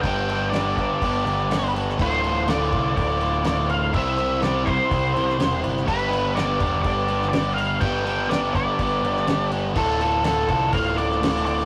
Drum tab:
CC |x-x-x-x-x-x-x-x-|x-x-x-x-x-x-x-x-|x-x-x-x-x-x-x-x-|x-x-x-x-x-x-x-x-|
SD |----o-------o--o|----o-------o---|----o------oo--o|----o------oo---|
BD |o-----o-o-------|o-----o-o-------|o-----o-o-------|o-----o-o-------|

CC |x-x-x-x-x-x-x-x-|x-x-x-x-x-x-x-x-|
SD |----o------oo---|----o------oo--o|
BD |o-----o-o-------|o-----o-o-------|